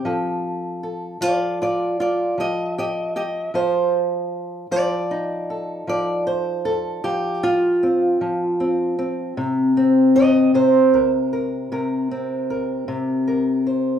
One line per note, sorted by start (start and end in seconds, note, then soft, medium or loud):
0.00 1.22 C4 medium
0.05 1.20 F3 medium
0.05 0.83 A4 medium
0.83 4.67 A4 soft
1.21 2.37 F3 medium
1.21 1.61 F4 medium
1.21 1.61 D5 medium
1.62 1.99 F4 medium
1.62 2.00 D5 medium
2.00 2.39 F4 medium
2.00 2.39 D5 medium
2.38 3.53 F3 medium
2.38 2.45 G4 medium
2.38 2.78 D#5 medium
2.78 2.84 G4 medium
2.78 3.15 D#5 medium
3.16 3.22 G4 medium
3.16 3.55 D#5 medium
3.54 4.66 F3 medium
3.54 3.94 C5 medium
4.71 5.86 F3 medium
4.71 5.88 D5 medium
5.11 7.43 D#4 soft
5.50 6.64 A4 soft
5.87 7.03 F3 medium
5.87 6.26 D5 medium
6.27 6.65 C5 medium
6.65 7.04 A4 medium
7.04 8.20 F3 medium
7.04 7.43 G4 medium
7.43 9.38 F4 loud
7.83 8.60 C4 soft
8.21 9.33 F3 medium
8.60 8.98 C4 soft
8.99 9.77 C4 soft
9.37 10.54 C3 medium
9.77 12.10 C4 medium
10.16 10.54 D#5 loud
10.54 11.71 C3 medium
10.54 12.88 C5 medium
10.94 11.32 A#4 soft
11.33 11.72 A#4 soft
11.72 12.87 C3 medium
11.72 12.49 A#4 soft
12.11 13.99 C4 soft
12.50 13.26 A#4 soft
12.88 13.99 C3 medium
13.28 13.99 A#4 soft
13.67 13.99 C5 soft